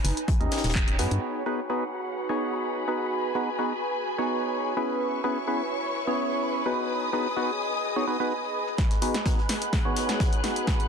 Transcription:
Already playing: analog synth pad D#4
0.04 fm bass F#1, closed hi-hat, open hi-hat
0.17 closed hi-hat
0.28 kick, closed hi-hat
0.40 fm bass D#2, synth stab C#4 D#4 G4 A#4 D#5, closed hi-hat
0.51 snare, closed hi-hat, open hi-hat
0.57 snare, closed hi-hat
0.64 fm bass D#1, analog synth pad C#5, snare, closed hi-hat
0.69 snare, closed hi-hat
0.75 kick, clap
0.88 closed hi-hat
0.99 fm bass G2, synth stab B3 D#4 F#4 G#4 B4, snare, closed hi-hat, open hi-hat
1.11 fm bass G2, closed hi-hat
1.22 analog synth pad F#4, string section G#4 F#5 B5, crash
1.46 synth stab B3 D#4 F#4 G#4 B4
1.57 analog synth pad B4, cabasa
1.70 synth stab B3 D#4 F#4 G#4 B4, cabasa
1.82 cabasa
2.06 cabasa
2.17 cabasa
2.29 synth stab B3 D#4 F#4 G#4 C#5, analog synth pad G#5, cabasa
2.53 cabasa
2.65 cabasa
2.77 cabasa
2.88 synth stab B3 D#4 F#4 G#4 B4
3.01 cabasa
3.11 string section G#5, cabasa
3.24 cabasa
3.35 synth stab B3 D#4 F#4 G#4 B4
3.48 cabasa
3.59 synth stab B3 D#4 F#4 G#4 B4, cabasa
3.71 cabasa
3.95 cabasa
4.06 cabasa
4.18 synth stab B3 D#4 F#4 G#4 C#5, cabasa
4.42 cabasa
4.54 cabasa
4.66 cabasa
4.77 synth stab B3 C#4 E4 G#4 B4
4.90 cabasa
5.00 analog synth pad E4, string section B4 E5 C#6, cabasa
5.09 analog synth pad C#5
5.13 cabasa
5.24 synth stab B3 C#4 E4 G#4 B4
5.37 cabasa
5.47 synth stab B3 C#4 E4 G#4 B4, cabasa
5.60 cabasa
5.66 analog synth pad B5
5.84 cabasa
5.95 cabasa
6.07 synth stab B3 C#4 E4 G#4 C#5, cabasa
6.31 cabasa
6.42 cabasa
6.55 cabasa
6.66 synth stab B3 D#4 F#4 G#4 B4, analog synth pad G#4, string section G#5 D#6
6.78 cabasa
6.89 analog synth pad D#5, cabasa
7.02 cabasa
7.13 synth stab B3 D#4 F#4 G#4 B4
7.26 cabasa
7.37 synth stab B3 D#4 F#4 G#4 B4, cabasa
7.49 cabasa
7.73 cabasa
7.84 cabasa
7.96 synth stab B3 D#4 F#4 G#4 C#5, cabasa
8.07 synth stab B3 D#4 F#4 G#4 B4
8.20 synth stab B3 D#4 F#4 G#4 B4, cabasa
8.31 cabasa
8.44 cabasa
8.67 cabasa
8.78 string section B4 G#5 F#6, kick, snare, closed hi-hat
8.91 snare, closed hi-hat
9.02 synth stab B3 D#4 F#4 G#4 B4, closed hi-hat, open hi-hat
9.14 snare, closed hi-hat
9.26 synth stab B3 D#4 F#4 G#4 B4, kick, snare, closed hi-hat
9.37 analog synth pad F#5, snare
9.49 snare, closed hi-hat, open hi-hat
9.62 closed hi-hat
9.73 kick, snare, closed hi-hat
9.85 synth stab B3 D#4 F#4 G#4 C#5
9.96 snare, closed hi-hat, open hi-hat
10.09 snare, closed hi-hat
10.20 kick, snare, closed hi-hat
10.33 closed hi-hat
10.44 synth stab B3 D#4 F#4 G#4 B4, snare, closed hi-hat, open hi-hat
10.56 closed hi-hat
10.67 kick, snare, closed hi-hat
10.80 closed hi-hat

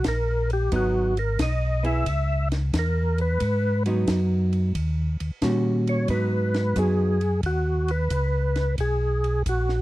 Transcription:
0.04 tonewheel organ A#1, kick, snare, hi-hat pedal, ride
0.08 tonewheel organ A#4
0.50 tonewheel organ G4, ride
0.72 tonewheel organ G#1, hollow-body jazz guitar F#3 B3 D#4, kick, ride
0.76 tonewheel organ F#4
1.17 tonewheel organ A#4, ride
1.39 tonewheel organ B1 D#5, kick, snare, hi-hat pedal, ride
1.83 hollow-body jazz guitar B3 E4 G#4, tonewheel organ E5, ride
2.06 tonewheel organ C#2, kick, ride
2.52 snare, ride
2.73 tonewheel organ E2, kick, snare, hi-hat pedal, ride
2.79 tonewheel organ A#4
3.18 tonewheel organ B4, ride
3.40 tonewheel organ G#2, kick, ride
3.86 hollow-body jazz guitar F#3 B3 D#4, ride
4.07 tonewheel organ F#2, kick, snare, hi-hat pedal, ride
4.53 ride
4.75 tonewheel organ D#2, kick, ride
5.20 tonewheel organ D#2, ride
5.41 tonewheel organ A#2, hollow-body jazz guitar D#3 G3 C#4 F#4, kick, snare, hi-hat pedal, ride
5.87 tonewheel organ C#5, ride
6.08 tonewheel organ G#2 B4, hollow-body jazz guitar F#3 B3 D#4, kick, ride
6.54 snare, ride
6.76 tonewheel organ F#2 G#4, hollow-body jazz guitar F#3 B3 D#4, kick, hi-hat pedal, ride
7.21 ride
7.43 tonewheel organ D#2 F#4, kick, ride
7.88 tonewheel organ B4, ride
8.10 tonewheel organ C#2, kick, hi-hat pedal, ride
8.56 snare, ride
8.78 tonewheel organ B1 G#4, kick, ride
9.24 ride
9.46 tonewheel organ A#1 F#4, kick, hi-hat pedal, ride
9.69 snare

